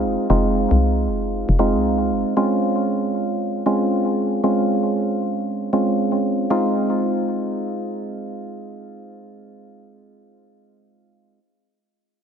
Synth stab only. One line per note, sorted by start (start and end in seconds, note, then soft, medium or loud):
0.00 0.27 G#3 medium
0.00 0.27 C4 medium
0.00 0.27 D#4 medium
0.00 0.28 F4 loud
0.30 1.57 G#3 medium
0.30 1.57 C4 medium
0.30 1.57 D#4 medium
0.30 1.57 F4 medium
1.59 2.34 G#3 medium
1.59 2.34 C4 medium
1.59 2.34 D#4 medium
1.59 2.34 F4 medium
2.37 3.64 G#3 medium
2.37 3.64 C4 medium
2.37 3.64 C#4 medium
2.37 3.64 F4 medium
3.66 4.41 G#3 medium
3.66 4.41 C4 medium
3.66 4.41 C#4 medium
3.66 4.41 F4 medium
4.44 5.70 G#3 medium
4.44 5.71 C4 medium
4.44 5.71 C#4 medium
4.44 5.71 F4 medium
5.73 6.48 G#3 medium
5.73 6.48 C4 medium
5.73 6.48 C#4 medium
5.73 6.48 F4 medium
6.50 11.39 G#3 medium
6.50 11.39 C4 medium
6.50 11.40 D#4 medium
6.50 11.40 F4 loud